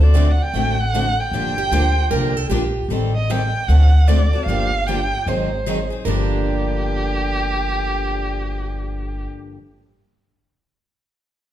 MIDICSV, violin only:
0, 0, Header, 1, 2, 480
1, 0, Start_track
1, 0, Key_signature, -2, "minor"
1, 0, Tempo, 394737
1, 1609, Time_signature, 4, 2, 24, 8
1, 14016, End_track
2, 0, Start_track
2, 0, Title_t, "Violin"
2, 0, Program_c, 0, 40
2, 38, Note_on_c, 0, 74, 80
2, 380, Note_on_c, 0, 78, 77
2, 398, Note_off_c, 0, 74, 0
2, 516, Note_on_c, 0, 79, 92
2, 535, Note_off_c, 0, 78, 0
2, 980, Note_on_c, 0, 78, 90
2, 998, Note_off_c, 0, 79, 0
2, 1466, Note_on_c, 0, 79, 95
2, 1484, Note_off_c, 0, 78, 0
2, 3063, Note_off_c, 0, 79, 0
2, 3828, Note_on_c, 0, 75, 79
2, 4018, Note_on_c, 0, 79, 83
2, 4037, Note_off_c, 0, 75, 0
2, 4480, Note_on_c, 0, 78, 82
2, 4498, Note_off_c, 0, 79, 0
2, 4954, Note_on_c, 0, 74, 81
2, 4972, Note_off_c, 0, 78, 0
2, 5419, Note_off_c, 0, 74, 0
2, 5426, Note_on_c, 0, 77, 89
2, 5922, Note_on_c, 0, 79, 88
2, 5940, Note_off_c, 0, 77, 0
2, 6417, Note_on_c, 0, 72, 68
2, 6436, Note_off_c, 0, 79, 0
2, 7192, Note_off_c, 0, 72, 0
2, 7380, Note_on_c, 0, 67, 83
2, 11260, Note_off_c, 0, 67, 0
2, 14016, End_track
0, 0, End_of_file